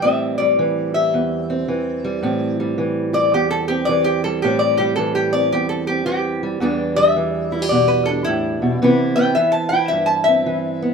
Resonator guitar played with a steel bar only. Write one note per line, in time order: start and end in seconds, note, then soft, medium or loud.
0.02 0.37 E5 medium
0.38 0.91 D5 medium
0.94 2.54 E5 medium
3.14 3.32 D5 medium
3.34 3.50 G4 medium
3.51 3.68 A4 medium
3.68 3.86 G4 medium
3.85 4.04 D5 medium
4.04 4.23 G4 medium
4.24 4.41 A4 medium
4.42 4.60 G4 medium
4.59 4.77 D5 medium
4.77 4.95 G4 medium
4.96 5.14 A4 medium
5.15 5.33 G4 medium
5.33 5.51 D5 medium
5.52 5.69 G4 medium
5.69 5.87 A4 medium
5.87 6.05 G4 medium
6.06 6.40 G4 medium
6.96 7.68 E5 loud
7.69 7.88 D5 medium
7.88 8.06 B4 medium
8.06 8.24 A4 medium
8.24 8.78 E4 medium
9.16 9.34 G5 medium
9.35 9.53 E5 medium
9.52 9.70 A5 medium
9.69 9.88 G5 medium
9.88 10.07 E5 medium
10.06 10.25 A5 medium
10.24 10.94 E5 medium